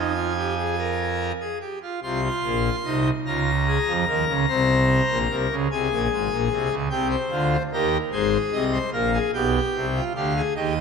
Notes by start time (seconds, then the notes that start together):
Already playing: F2 F3 D#4 G#5
0.15 F4
0.37 G4
0.58 G#4
0.79 A#4
1.40 G#4
1.61 G4
1.83 F4
2.03 C2 C3 F4 C6
2.24 F4
2.44 A#1 A#2
2.85 C2 C3 D#4
3.26 C#2 C#3 F4 A#5
3.67 G#4
3.87 F2 F3
4.07 D#2 D#3 A#4
4.28 C#2 C#3
4.49 C2 C3 C5
5.10 A#1 A#2
5.30 C2 C3 A#4
5.51 C#2 C#3
5.71 C2 C3 G#4 G#5
5.91 A#1 A#2
6.11 G#1 G#2
6.31 A#1 A#2
6.51 C2 C3
6.71 C#2 C#3
6.90 C2 C3 G4 G5
7.10 C5
7.32 D2 D3 F4
7.72 D#2 D#3 G4 A#4
8.12 G#1 G#2 G#4 C5
8.53 C2 C3 D#5
8.73 C5
8.93 A#1 A#2 A#4 F5
9.14 G#4
9.34 B1 B2 G4 G5
9.75 C2 C3
9.96 F4
10.15 D2 D3 G4 F5
10.36 G#4
10.56 D#2 D#3 G4 D#5